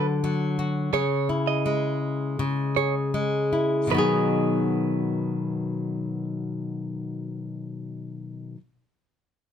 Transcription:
0.00 0.93 D3 medium
0.00 0.23 F#3 medium
0.00 0.58 F#4 medium
0.00 0.93 A4 medium
0.24 1.01 F#3 medium
0.59 1.01 F#4 medium
0.93 2.38 C#3 medium
0.93 2.76 G#4 medium
0.93 1.28 C#5 medium
1.29 3.51 E4 medium
1.47 1.99 D#5 medium
1.66 3.14 G#3 medium
2.39 3.90 C#3 medium
2.76 3.98 G#4 soft
2.76 2.94 C#5 medium
3.14 3.92 G#3 medium
3.53 3.96 E4 soft
3.87 8.55 B2 medium
3.87 8.56 D#3 medium
3.91 8.57 F#3 medium
3.91 8.58 B3 medium
3.91 6.24 B4 medium
3.96 8.59 D#4 medium
3.96 8.60 G#4 medium

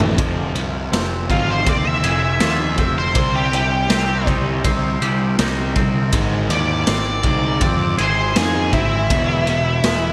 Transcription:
0.00 0.20 A1 medium
0.00 0.15 A2 medium
0.00 0.16 A2 loud
0.00 0.15 E3 medium
0.00 0.16 A3 medium
0.00 0.17 A3 medium
0.00 0.16 C4 medium
0.00 0.15 E4 medium
0.00 0.16 E4 medium
0.00 floor tom medium
0.17 0.52 F1 medium
0.17 0.52 F2 medium
0.17 0.53 C3 medium
0.17 0.53 F3 medium
0.17 2.04 F3 medium
0.17 kick loud
0.17 ride loud
0.54 0.89 C2 medium
0.54 0.88 F2 medium
0.54 0.89 C3 medium
0.54 ride medium
0.92 1.26 F1 medium
0.92 1.26 F2 medium
0.92 1.26 C3 medium
0.92 1.67 C4 medium
0.92 snare loud
0.92 ride medium
1.29 1.64 G#1 medium
1.29 1.64 F2 medium
1.29 1.64 C3 medium
1.29 1.65 F3 medium
1.29 2.40 F4 medium
1.29 1.49 F4 medium
1.29 kick medium
1.29 ride medium
1.50 1.67 C5 medium
1.65 2.00 D#2 medium
1.65 2.00 F2 medium
1.65 2.00 C3 medium
1.65 2.78 C4 medium
1.65 1.87 D5 medium
1.65 kick loud
1.65 ride medium
1.87 2.95 E5 medium
2.03 2.38 F1 medium
2.03 2.37 F2 medium
2.03 2.37 C3 medium
2.03 3.16 G#4 medium
2.03 ride medium
2.40 2.75 D#2 medium
2.40 2.75 F2 medium
2.40 2.76 C3 medium
2.40 2.76 F3 medium
2.40 3.16 F4 medium
2.40 snare loud
2.40 ride medium
2.77 3.12 F1 medium
2.77 3.12 F2 medium
2.77 3.12 C3 medium
2.77 3.90 C4 medium
2.77 kick medium
2.77 ride medium
2.98 3.34 C5 medium
3.13 3.86 C2 medium
3.13 3.50 C3 medium
3.13 5.02 C3 medium
3.13 3.50 G3 medium
3.13 3.50 C4 medium
3.13 kick loud
3.13 ride medium
3.36 3.53 G4 medium
3.53 3.86 C3 medium
3.53 3.86 G3 medium
3.53 4.26 G4 medium
3.53 ride medium
3.89 4.61 C2 medium
3.89 4.23 C3 medium
3.89 4.23 G3 medium
3.89 4.64 C4 medium
3.89 snare loud
3.89 ride medium
4.26 4.62 C3 medium
4.26 4.62 G3 medium
4.26 4.62 C4 medium
4.26 5.38 D#4 medium
4.26 kick medium
4.26 ride medium
4.64 4.99 C2 medium
4.64 4.98 C3 medium
4.64 4.98 G3 medium
4.64 5.74 C4 medium
4.64 kick loud
4.64 ride medium
5.00 5.35 C2 medium
5.00 5.35 C3 medium
5.00 5.35 G3 medium
5.00 6.13 G4 medium
5.00 ride medium
5.39 5.73 C2 medium
5.39 5.74 C3 medium
5.39 5.74 G3 medium
5.39 5.75 C4 medium
5.39 6.13 D#4 medium
5.39 snare loud
5.39 ride medium
5.76 6.10 C2 medium
5.76 6.10 C3 medium
5.76 6.10 G3 medium
5.76 6.13 C4 medium
5.76 kick medium
5.76 ride medium
6.13 6.47 G#1 medium
6.13 7.99 G#2 medium
6.13 6.48 G#2 medium
6.13 6.49 D#3 medium
6.13 6.49 G#3 medium
6.13 kick loud
6.13 ride loud
6.49 6.84 D#2 medium
6.49 6.83 G#2 medium
6.49 6.84 D#3 medium
6.49 7.95 D5 medium
6.49 ride medium
6.87 7.22 G#1 medium
6.87 7.21 G#2 medium
6.87 7.21 D#3 medium
6.87 7.60 C4 medium
6.87 snare loud
6.87 ride medium
7.23 7.59 C2 medium
7.23 7.59 G#2 medium
7.23 7.60 D#3 loud
7.23 7.60 G#3 loud
7.23 kick medium
7.23 ride medium
7.61 7.96 F2 medium
7.61 7.95 G#2 medium
7.61 7.95 D#3 medium
7.61 8.72 C4 medium
7.61 kick loud
7.61 ride medium
7.98 8.33 G#1 medium
7.98 8.32 G#2 medium
7.98 8.32 D#3 medium
7.98 10.13 G#4 medium
7.98 8.36 C5 medium
7.98 ride medium
8.35 8.70 F2 medium
8.35 8.70 G#2 medium
8.35 8.71 D#3 medium
8.35 8.71 G#3 medium
8.35 8.73 G#4 medium
8.35 snare loud
8.35 ride medium
8.72 9.07 G#1 medium
8.72 9.06 G#2 medium
8.72 9.07 D#3 medium
8.72 9.10 C4 medium
8.72 10.13 E4 medium
8.72 kick medium
8.72 ride medium
9.10 9.81 E1 medium
9.10 9.45 E2 medium
9.10 10.13 E2 medium
9.10 9.45 B2 medium
9.10 9.46 E3 medium
9.10 kick loud
9.10 ride medium
9.47 9.81 E2 medium
9.47 9.81 B2 medium
9.47 ride medium
9.84 10.13 E1 medium
9.84 10.13 E2 medium
9.84 10.13 B2 medium
9.84 10.13 G#3 medium
9.84 snare loud
9.84 ride medium

